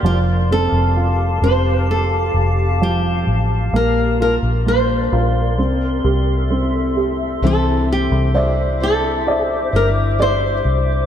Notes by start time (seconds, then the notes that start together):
0.03 F1 F3 G4 F5 A5
0.51 C4 A4
0.72 F1
0.96 F4
1.42 F1 C4 C5
1.91 A4
2.34 F1
2.81 F3 G4
3.27 A1
3.73 A#1 A#3 A#4 D5 C6
4.20 F4 A#4
4.43 A#1
4.66 A#3 C5
5.12 A#1 F4
5.58 C2 C4 A4 E5
6.04 C2 G4
6.50 C4
6.96 G4
7.41 C2 C3 E3 G3 C4 D4 E4 C5 E5 D6
7.47 A4
7.92 G4
8.12 C2
8.34 G3 D4 E4 C5 D5 E5
8.80 G3 D4 E4 A4 C5
9.27 C5 D5 E5
9.45 G4
9.73 G1 G3 D4 E4 A#4 C5
10.19 G3 D4 E4 C5 D5 E5
10.65 C2